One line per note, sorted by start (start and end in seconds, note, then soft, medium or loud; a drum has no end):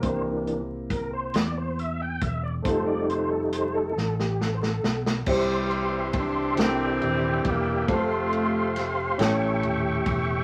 0.00 1.30 C2 medium
0.00 1.30 C3 medium
0.00 0.61 E3 soft
0.00 2.60 A#3 medium
0.00 0.61 A#3 soft
0.00 2.61 C4 soft
0.00 0.61 D4 soft
0.00 2.62 E4 soft
0.00 0.22 C5 medium
0.00 kick medium
0.00 closed hi-hat medium
0.05 2.62 G4 soft
0.05 2.63 A#4 medium
0.47 closed hi-hat soft
0.90 1.11 A#4 medium
0.90 kick medium
0.90 closed hi-hat medium
1.13 1.35 C5 medium
1.34 2.18 E2 medium
1.34 1.58 D5 medium
1.34 snare medium
1.34 closed hi-hat medium
1.57 1.79 C5 medium
1.79 2.01 E5 medium
1.79 closed hi-hat soft
2.02 2.21 G5 medium
2.21 2.62 E1 medium
2.21 2.42 E5 medium
2.21 kick medium
2.21 closed hi-hat medium
2.43 2.53 D5 medium
2.62 3.92 F1 medium
2.62 3.92 G3 soft
2.62 5.22 A3 medium
2.62 3.92 A3 soft
2.62 5.22 C4 soft
2.62 5.23 D#4 medium
2.62 3.93 D#4 medium
2.62 2.88 C5 medium
2.62 kick loud
2.62 closed hi-hat medium
2.67 5.24 F4 medium
2.67 5.25 A4 medium
2.86 3.07 D5 medium
3.09 3.30 C5 medium
3.09 closed hi-hat soft
3.31 3.41 A4 medium
3.52 3.75 C5 medium
3.52 closed hi-hat medium
3.75 4.15 A4 medium
3.96 4.80 A1 loud
3.96 snare medium
4.20 4.42 G4 medium
4.20 snare soft
4.41 4.54 A4 medium
4.41 snare medium
4.54 4.62 C5 medium
4.62 5.03 A4 medium
4.62 snare medium
4.83 5.24 B1 medium
4.83 snare medium
5.06 snare medium
5.26 6.54 C2 loud
5.26 6.54 C3 medium
5.26 6.55 C3 medium
5.26 6.55 E3 medium
5.26 6.58 G3 medium
5.26 6.11 G3 loud
5.26 6.54 C4 medium
5.26 6.56 E4 medium
5.26 6.57 G4 medium
5.26 6.59 G4 medium
5.26 6.57 C5 medium
5.26 6.59 C5 medium
5.26 7.86 E5 medium
5.26 6.57 C6 medium
5.26 kick loud
5.26 crash medium
5.71 ride soft
6.13 kick loud
6.13 ride medium
6.17 6.57 D4 loud
6.56 6.98 C2 loud
6.56 7.84 C3 medium
6.56 7.87 C4 medium
6.56 7.88 D4 medium
6.56 7.88 E4 medium
6.56 10.44 G4 medium
6.56 7.88 A4 medium
6.56 7.89 A#4 medium
6.56 7.87 D5 medium
6.56 7.87 G5 medium
6.56 snare medium
6.56 ride medium
6.60 7.86 E3 medium
6.60 7.86 G3 medium
6.60 7.47 C4 loud
7.01 7.42 D#1 medium
7.01 ride soft
7.44 7.85 E1 medium
7.44 7.90 A#3 medium
7.44 kick medium
7.44 ride medium
7.87 9.15 F1 loud
7.87 9.15 C3 medium
7.87 9.15 F3 medium
7.87 9.18 A3 medium
7.87 9.20 A3 medium
7.87 9.19 C4 medium
7.87 9.19 F4 medium
7.87 9.19 A4 medium
7.87 7.96 B4 medium
7.87 9.18 C5 medium
7.87 9.18 F5 medium
7.87 9.18 C6 medium
7.87 kick loud
7.87 ride medium
7.97 9.23 C5 medium
8.33 ride soft
8.76 snare soft
8.76 ride medium
9.18 9.63 A1 loud
9.18 10.44 A2 medium
9.18 10.44 C#4 medium
9.18 10.44 E4 medium
9.18 10.44 G4 medium
9.18 10.44 A4 medium
9.18 10.44 C#5 medium
9.18 10.44 E5 medium
9.18 10.44 G5 medium
9.18 10.44 C#6 medium
9.18 snare loud
9.18 ride medium
9.63 10.03 D#1 medium
9.63 ride soft
10.06 10.44 E1 medium
10.06 kick medium
10.06 ride medium